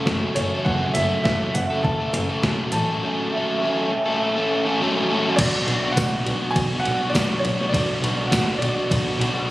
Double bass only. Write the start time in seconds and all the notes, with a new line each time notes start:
0.06 F#1
0.37 F#1
0.66 F#1
0.95 F#1
1.25 F#1
1.56 F#1
1.84 F#1
2.14 F#1
2.43 B1
2.73 A1
5.38 B1
5.67 B1
5.96 B1
6.27 B1
6.56 B1
6.85 B1
7.14 B1
7.45 B1
7.74 B1
8.03 B1
8.32 B1
8.61 B1
8.91 B1
9.19 B1